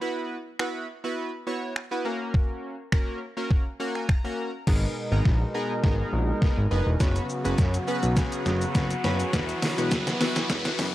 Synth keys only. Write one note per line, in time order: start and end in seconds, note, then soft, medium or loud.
0.01 0.37 B3 medium
0.01 0.37 E4 medium
0.01 0.37 F#4 medium
0.01 0.37 B4 medium
0.59 0.86 B3 medium
0.59 0.86 E4 medium
0.59 0.86 F#4 medium
0.59 0.86 B4 medium
1.04 1.30 B3 medium
1.04 1.30 E4 medium
1.04 1.30 F#4 medium
1.04 1.30 B4 medium
1.47 1.73 B3 medium
1.47 1.73 E4 medium
1.47 1.73 F#4 medium
1.47 1.74 C#5 medium
1.91 2.05 B3 medium
1.91 2.05 E4 medium
1.91 2.04 F#4 medium
1.91 2.05 B4 medium
2.05 2.76 A#3 medium
2.05 2.76 C#4 medium
2.05 2.76 F#4 medium
2.05 2.76 A#4 medium
2.92 3.19 A#3 medium
2.92 3.19 C#4 medium
2.92 3.19 F#4 medium
2.92 3.19 A#4 medium
3.37 3.63 A#3 medium
3.37 3.63 C#4 medium
3.37 3.63 F#4 medium
3.37 3.63 A#4 medium
3.80 4.06 A#3 medium
3.80 4.06 C#4 medium
3.80 4.06 F#4 medium
3.80 4.07 A#4 medium
3.80 3.94 F#5 medium
3.95 4.08 G#5 medium
4.09 4.23 A#5 medium
4.24 4.51 A#3 medium
4.24 4.51 C#4 medium
4.24 4.51 F#4 medium
4.24 4.51 A#4 medium
4.24 4.64 A#5 medium
4.67 4.94 B3 medium
4.67 4.94 D#4 medium
4.67 4.94 G#4 medium
4.67 4.94 A#4 medium
5.11 5.38 B3 medium
5.11 5.38 D#4 medium
5.11 5.38 G#4 medium
5.11 5.38 A#4 medium
5.54 5.73 B3 medium
5.54 5.73 D#4 medium
5.54 5.73 G#4 medium
5.54 5.73 A#4 medium
5.83 6.19 B3 medium
5.83 6.19 D#4 medium
5.83 6.19 G#4 medium
5.83 6.19 A#4 medium
6.42 6.60 B3 medium
6.42 6.60 D#4 medium
6.42 6.60 G#4 medium
6.42 6.60 A#4 medium
6.71 6.89 B3 medium
6.71 6.89 D#4 medium
6.71 6.89 G#4 medium
6.71 6.90 B4 medium
7.00 7.27 B3 medium
7.00 7.27 C#4 medium
7.00 7.27 F#4 medium
7.00 7.27 B4 medium
7.44 7.71 B3 medium
7.44 7.71 C#4 medium
7.44 7.71 F#4 medium
7.44 7.71 B4 medium
7.87 8.06 B3 medium
7.87 8.06 C#4 medium
7.87 8.06 F#4 medium
7.87 8.06 B4 loud
8.17 8.52 B3 medium
8.17 8.52 C#4 medium
8.17 8.52 F#4 medium
8.17 8.52 G#4 medium
8.75 8.93 B3 medium
8.75 8.93 C#4 medium
8.75 8.93 F#4 medium
8.75 8.93 B4 medium
8.75 9.02 F#5 medium
9.04 9.22 B3 medium
9.04 9.22 C#4 medium
9.04 9.23 F#4 medium
9.04 9.23 B4 loud
9.04 9.31 G#5 medium
9.33 9.60 B3 medium
9.33 9.60 E4 medium
9.33 9.60 F#4 medium
9.33 9.60 B4 medium
9.78 10.04 B3 medium
9.78 10.04 E4 medium
9.78 10.04 F#4 medium
9.78 10.04 B4 medium
10.20 10.39 B3 medium
10.20 10.39 E4 medium
10.20 10.39 F#4 medium
10.20 10.39 B4 loud
10.50 10.85 B3 medium
10.50 10.85 E4 medium
10.50 10.85 F#4 medium
10.50 10.85 B4 medium